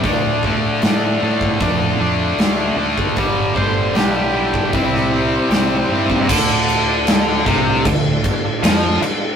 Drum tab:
CC |----------------|----------------|x-x-x-x-x-x-x-x-|
HH |o---o---o---o---|o---o---o---o---|----------------|
SD |----o-------o---|----o----o--o---|----o-------o---|
BD |o-o----oo------o|o-o----oo------o|o-----o-o-o-----|